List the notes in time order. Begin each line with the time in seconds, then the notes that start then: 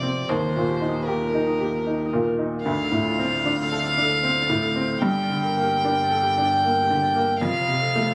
Already playing: F1 F2 C3 C4 F4 G4 A4 C5 D5
0.03 C4
0.29 D#2 D#4 C5
0.48 A#4
0.56 A#2
0.68 G4
0.81 D#4
0.89 D#4
1.06 G4 A#4
1.27 A#4
1.34 D#4
1.47 D#4
1.60 G4
1.66 A#4
1.87 D#4
2.06 D#4
2.13 A#2
2.25 A#4
2.39 D#4
2.63 D2 D4 F5
2.84 A4
2.91 A2
3.04 F4
3.19 C4
3.23 D4
3.43 D4 F4
3.63 A4
3.72 A4
3.82 D4
3.98 D4
4.02 A4
4.23 C4
4.42 D4
4.49 A2
4.62 A4
4.76 C4
5.01 G1 G2 G4 G5
5.22 D5
5.29 D3
5.43 A#4
5.57 A#3
5.63 G4
5.83 D4 A#4
6.03 D5
6.11 A4
6.23 G4
6.38 D4
6.43 D5
6.64 A#3
6.82 G4
6.90 D3
7.02 D5
7.16 A#3
7.40 F1 F2 F4 F5
7.61 C5
7.68 C3
7.81 A4
7.95 A3
8.01 F4